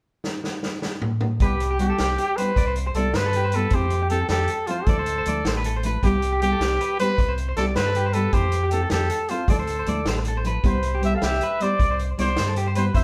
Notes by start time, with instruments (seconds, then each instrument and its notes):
0.24 snare
0.44 snare
0.63 snare
0.82 snare
1.02 mid tom
1.21 mid tom
1.40 fingered electric bass C2, nylon-string guitar G3 B3 E4, trumpet G4, clean electric guitar B4, kick, closed hi-hat
1.60 closed hi-hat
1.71 clean electric guitar G4
1.79 nylon-string guitar G3 B3 E4, trumpet G4, closed hi-hat
1.90 clean electric guitar A4
1.98 fingered electric bass C2, clean electric guitar G4, snare, closed hi-hat
2.18 clean electric guitar G4, closed hi-hat
2.36 nylon-string guitar G3 B3, trumpet B4, clean electric guitar C5, closed hi-hat
2.41 nylon-string guitar E4
2.56 fingered electric bass C2, clean electric guitar D5, kick, closed hi-hat
2.67 clean electric guitar C5
2.76 closed hi-hat
2.87 clean electric guitar C5
2.94 fingered electric bass C2, nylon-string guitar G3 B3, trumpet A4, clean electric guitar D5, closed hi-hat
2.99 nylon-string guitar E4
3.14 fingered electric bass G2, trumpet B4, clean electric guitar C5, snare, closed hi-hat
3.26 clean electric guitar A4
3.33 clean electric guitar G4, closed hi-hat
3.45 clean electric guitar C5
3.52 nylon-string guitar G3 B3, trumpet A4, clean electric guitar B4, closed hi-hat
3.57 nylon-string guitar E4
3.70 fingered electric bass F2, nylon-string guitar F3 C4 E4, clean electric guitar C5, kick, closed hi-hat
3.74 trumpet G4, nylon-string guitar A4
3.90 closed hi-hat
4.03 clean electric guitar G4
4.10 nylon-string guitar F3 C4 E4 A4, trumpet A4, closed hi-hat
4.22 clean electric guitar A4
4.29 fingered electric bass F2, clean electric guitar G4, trumpet A4, snare, closed hi-hat
4.48 clean electric guitar A4, closed hi-hat
4.67 nylon-string guitar F3 C4 E4 A4, trumpet F4, clean electric guitar C5, closed hi-hat
4.86 fingered electric bass D2, nylon-string guitar F3 A3 E4 A4, trumpet A4, clean electric guitar D5, kick, closed hi-hat
4.99 clean electric guitar C5
5.06 closed hi-hat
5.18 clean electric guitar C5
5.26 fingered electric bass D2, nylon-string guitar F3 A3 E4 A4, clean electric guitar D5, closed hi-hat
5.45 fingered electric bass A1, clean electric guitar C5, snare, closed hi-hat
5.57 clean electric guitar B4
5.64 clean electric guitar A4, closed hi-hat
5.76 clean electric guitar C5
5.83 nylon-string guitar F3 A3 E4 A4, clean electric guitar B4, closed hi-hat
6.03 fingered electric bass C2, nylon-string guitar G3 B3 E4 G4, trumpet G4, muted clean electric guitar stroke, kick, closed hi-hat
6.22 closed hi-hat
6.33 clean electric guitar G4
6.42 nylon-string guitar G3 B3 E4 G4, trumpet G4, closed hi-hat
6.52 clean electric guitar A4
6.60 fingered electric bass C2, clean electric guitar G4, snare, closed hi-hat
6.81 clean electric guitar B4, closed hi-hat
6.99 nylon-string guitar G3 B3 E4 G4, trumpet B4, clean electric guitar C5, closed hi-hat
7.18 fingered electric bass C2, muted clean electric guitar stroke, kick, closed hi-hat
7.29 clean electric guitar C5
7.38 closed hi-hat
7.49 clean electric guitar C5
7.57 fingered electric bass C2, nylon-string guitar G3 B3 E4 G4, trumpet A4, clean electric guitar D5, snare, closed hi-hat
7.76 fingered electric bass G2, trumpet B4, clean electric guitar C5, snare, closed hi-hat
7.87 clean electric guitar A4
7.95 clean electric guitar G4, closed hi-hat
8.06 clean electric guitar C5
8.13 nylon-string guitar G3 B3 E4, trumpet A4, clean electric guitar B4, closed hi-hat
8.17 nylon-string guitar G4
8.33 fingered electric bass F2, nylon-string guitar E3 C4 E4 A4, trumpet G4, clean electric guitar C5, kick, closed hi-hat
8.52 closed hi-hat
8.63 clean electric guitar G4
8.71 nylon-string guitar E3 C4 E4, trumpet A4, closed hi-hat
8.75 nylon-string guitar A4
8.83 clean electric guitar A4
8.90 fingered electric bass F2, clean electric guitar G4, trumpet A4, snare, closed hi-hat
9.10 clean electric guitar A4, closed hi-hat
9.28 nylon-string guitar C4 E4, trumpet F4, clean electric guitar C5, closed hi-hat
9.32 nylon-string guitar A4
9.48 fingered electric bass D2, nylon-string guitar F3 A3 E4 A4, trumpet A4, clean electric guitar D5, kick, closed hi-hat
9.59 clean electric guitar C5
9.67 closed hi-hat
9.79 clean electric guitar C5
9.86 fingered electric bass D2, nylon-string guitar F3 A3 E4 A4, clean electric guitar D5, closed hi-hat
10.05 fingered electric bass A1, clean electric guitar C5, snare, closed hi-hat
10.19 muted clean electric guitar stroke
10.25 clean electric guitar A4, closed hi-hat
10.37 clean electric guitar C5
10.44 nylon-string guitar F3 E4 A4, clean electric guitar B4, muted nylon-string guitar stroke, closed hi-hat
10.63 fingered electric bass C2, nylon-string guitar G3 B3 E4 G4, clean electric guitar B4, trumpet C5, kick, closed hi-hat
10.83 closed hi-hat
10.95 clean electric guitar G4
11.01 nylon-string guitar G3 B3 E4 G4, trumpet E5, closed hi-hat
11.15 clean electric guitar A4, trumpet F5
11.22 fingered electric bass C2, clean electric guitar G4, trumpet E5, snare, closed hi-hat
11.41 clean electric guitar B4, closed hi-hat
11.60 nylon-string guitar G3 B3 E4 G4, clean electric guitar C5, trumpet D5, closed hi-hat
11.79 fingered electric bass C2, clean electric guitar D5, kick, closed hi-hat
11.91 clean electric guitar C5
11.99 closed hi-hat
12.17 fingered electric bass C2, nylon-string guitar G3 B3 E4, trumpet C5, clean electric guitar D5, snare, closed hi-hat
12.36 fingered electric bass G2, clean electric guitar C5, snare, closed hi-hat
12.48 clean electric guitar A4
12.56 clean electric guitar G4, closed hi-hat
12.67 clean electric guitar C5
12.75 nylon-string guitar G3 B3 E4, clean electric guitar B4, trumpet C5, closed hi-hat
12.79 nylon-string guitar G4
12.94 fingered electric bass F2, nylon-string guitar E3 C4 E4 A4, clean electric guitar C5, trumpet E5, kick, closed hi-hat